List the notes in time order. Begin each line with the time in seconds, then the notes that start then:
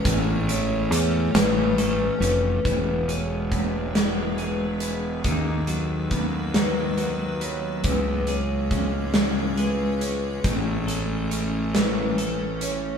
Already playing: C#5
0.03 A1 A2 E3 A3 C#4 A4, kick, closed hi-hat
0.48 E3 C#5, closed hi-hat
0.91 E2 A3, closed hi-hat
1.35 A1 E3 B4, snare, closed hi-hat
1.78 A3, closed hi-hat
2.20 F1 C#4 B4, closed hi-hat
2.64 E1 E3 G#3 B3 G#4 B4, kick, closed hi-hat
3.08 G#3 C#5, closed hi-hat
3.52 B3, kick, closed hi-hat
3.95 E3, snare, closed hi-hat
4.38 G#3 B4, closed hi-hat
4.80 B3, closed hi-hat
5.24 D#2 D#3 F#3 F#4 B4, kick, closed hi-hat
5.67 F#3 A4, closed hi-hat
6.11 B3, kick, closed hi-hat
6.54 D#3 B4, snare, closed hi-hat
6.97 F#3, closed hi-hat
7.41 B3 C#5, closed hi-hat
7.84 C#2 C#3 E3 G#3 C#4 G#4 B4 C#5, kick, closed hi-hat
8.27 G#3 C#5, closed hi-hat
8.71 C#4, kick, closed hi-hat
9.14 C#3, snare, closed hi-hat
9.57 G#3 B4, closed hi-hat
10.01 C#4, closed hi-hat
10.44 A1 A2 E3 A3 A4, kick, closed hi-hat
10.87 A3 A4, closed hi-hat
11.31 C#4, closed hi-hat
11.74 E3 B4, snare, closed hi-hat
12.18 A3, closed hi-hat
12.61 C#4 C#5, closed hi-hat